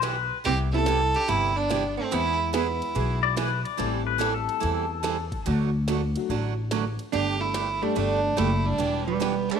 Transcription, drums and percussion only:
0, 0, Header, 1, 2, 480
1, 0, Start_track
1, 0, Key_signature, 1, "major"
1, 0, Tempo, 417246
1, 527, Time_signature, 4, 2, 24, 8
1, 11043, End_track
2, 0, Start_track
2, 0, Title_t, "Drums"
2, 34, Note_on_c, 9, 38, 66
2, 34, Note_on_c, 9, 44, 57
2, 34, Note_on_c, 9, 51, 69
2, 149, Note_off_c, 9, 38, 0
2, 149, Note_off_c, 9, 44, 0
2, 149, Note_off_c, 9, 51, 0
2, 520, Note_on_c, 9, 51, 55
2, 635, Note_off_c, 9, 51, 0
2, 992, Note_on_c, 9, 38, 65
2, 992, Note_on_c, 9, 44, 59
2, 992, Note_on_c, 9, 51, 72
2, 1107, Note_off_c, 9, 38, 0
2, 1107, Note_off_c, 9, 44, 0
2, 1107, Note_off_c, 9, 51, 0
2, 1317, Note_on_c, 9, 51, 47
2, 1432, Note_off_c, 9, 51, 0
2, 1480, Note_on_c, 9, 51, 65
2, 1595, Note_off_c, 9, 51, 0
2, 1961, Note_on_c, 9, 38, 72
2, 1961, Note_on_c, 9, 44, 65
2, 1961, Note_on_c, 9, 51, 68
2, 2076, Note_off_c, 9, 38, 0
2, 2076, Note_off_c, 9, 44, 0
2, 2076, Note_off_c, 9, 51, 0
2, 2441, Note_on_c, 9, 51, 60
2, 2556, Note_off_c, 9, 51, 0
2, 2920, Note_on_c, 9, 38, 72
2, 2920, Note_on_c, 9, 44, 52
2, 2920, Note_on_c, 9, 51, 68
2, 3035, Note_off_c, 9, 38, 0
2, 3035, Note_off_c, 9, 44, 0
2, 3035, Note_off_c, 9, 51, 0
2, 3243, Note_on_c, 9, 51, 47
2, 3358, Note_off_c, 9, 51, 0
2, 3400, Note_on_c, 9, 51, 65
2, 3515, Note_off_c, 9, 51, 0
2, 3880, Note_on_c, 9, 38, 70
2, 3880, Note_on_c, 9, 44, 63
2, 3880, Note_on_c, 9, 51, 73
2, 3995, Note_off_c, 9, 38, 0
2, 3995, Note_off_c, 9, 44, 0
2, 3995, Note_off_c, 9, 51, 0
2, 4204, Note_on_c, 9, 51, 48
2, 4319, Note_off_c, 9, 51, 0
2, 4366, Note_on_c, 9, 51, 66
2, 4481, Note_off_c, 9, 51, 0
2, 4843, Note_on_c, 9, 38, 70
2, 4843, Note_on_c, 9, 44, 62
2, 4843, Note_on_c, 9, 51, 69
2, 4958, Note_off_c, 9, 38, 0
2, 4958, Note_off_c, 9, 44, 0
2, 4958, Note_off_c, 9, 51, 0
2, 5164, Note_on_c, 9, 51, 44
2, 5279, Note_off_c, 9, 51, 0
2, 5324, Note_on_c, 9, 51, 66
2, 5439, Note_off_c, 9, 51, 0
2, 5801, Note_on_c, 9, 38, 63
2, 5801, Note_on_c, 9, 44, 61
2, 5801, Note_on_c, 9, 51, 74
2, 5916, Note_off_c, 9, 38, 0
2, 5916, Note_off_c, 9, 44, 0
2, 5916, Note_off_c, 9, 51, 0
2, 6120, Note_on_c, 9, 36, 61
2, 6121, Note_on_c, 9, 51, 46
2, 6235, Note_off_c, 9, 36, 0
2, 6236, Note_off_c, 9, 51, 0
2, 6279, Note_on_c, 9, 51, 60
2, 6394, Note_off_c, 9, 51, 0
2, 6762, Note_on_c, 9, 38, 74
2, 6762, Note_on_c, 9, 44, 55
2, 6762, Note_on_c, 9, 51, 70
2, 6877, Note_off_c, 9, 38, 0
2, 6877, Note_off_c, 9, 44, 0
2, 6877, Note_off_c, 9, 51, 0
2, 7081, Note_on_c, 9, 51, 72
2, 7196, Note_off_c, 9, 51, 0
2, 7721, Note_on_c, 9, 38, 71
2, 7721, Note_on_c, 9, 44, 61
2, 7721, Note_on_c, 9, 51, 70
2, 7836, Note_off_c, 9, 38, 0
2, 7836, Note_off_c, 9, 44, 0
2, 7836, Note_off_c, 9, 51, 0
2, 8042, Note_on_c, 9, 51, 45
2, 8157, Note_off_c, 9, 51, 0
2, 8206, Note_on_c, 9, 51, 66
2, 8321, Note_off_c, 9, 51, 0
2, 8679, Note_on_c, 9, 38, 67
2, 8679, Note_on_c, 9, 44, 54
2, 8679, Note_on_c, 9, 51, 74
2, 8794, Note_off_c, 9, 38, 0
2, 8794, Note_off_c, 9, 44, 0
2, 8794, Note_off_c, 9, 51, 0
2, 9157, Note_on_c, 9, 51, 66
2, 9272, Note_off_c, 9, 51, 0
2, 9642, Note_on_c, 9, 38, 76
2, 9642, Note_on_c, 9, 44, 50
2, 9642, Note_on_c, 9, 51, 68
2, 9757, Note_off_c, 9, 38, 0
2, 9757, Note_off_c, 9, 44, 0
2, 9757, Note_off_c, 9, 51, 0
2, 10120, Note_on_c, 9, 51, 69
2, 10235, Note_off_c, 9, 51, 0
2, 10605, Note_on_c, 9, 38, 63
2, 10605, Note_on_c, 9, 44, 57
2, 10605, Note_on_c, 9, 51, 65
2, 10720, Note_off_c, 9, 38, 0
2, 10720, Note_off_c, 9, 44, 0
2, 10720, Note_off_c, 9, 51, 0
2, 10925, Note_on_c, 9, 51, 49
2, 11041, Note_off_c, 9, 51, 0
2, 11043, End_track
0, 0, End_of_file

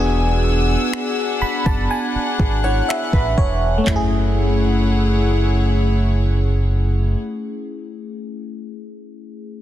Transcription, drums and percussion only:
0, 0, Header, 1, 2, 480
1, 0, Start_track
1, 0, Key_signature, 3, "minor"
1, 0, Tempo, 983607
1, 1888, Time_signature, 4, 2, 24, 8
1, 4694, End_track
2, 0, Start_track
2, 0, Title_t, "Drums"
2, 456, Note_on_c, 9, 26, 114
2, 505, Note_off_c, 9, 26, 0
2, 810, Note_on_c, 9, 36, 85
2, 859, Note_off_c, 9, 36, 0
2, 1169, Note_on_c, 9, 36, 88
2, 1217, Note_off_c, 9, 36, 0
2, 1417, Note_on_c, 9, 26, 112
2, 1465, Note_off_c, 9, 26, 0
2, 1528, Note_on_c, 9, 36, 83
2, 1577, Note_off_c, 9, 36, 0
2, 1648, Note_on_c, 9, 36, 85
2, 1697, Note_off_c, 9, 36, 0
2, 1888, Note_on_c, 9, 36, 89
2, 1888, Note_on_c, 9, 39, 81
2, 1888, Note_on_c, 9, 43, 93
2, 1937, Note_off_c, 9, 36, 0
2, 1937, Note_off_c, 9, 39, 0
2, 1937, Note_off_c, 9, 43, 0
2, 4694, End_track
0, 0, End_of_file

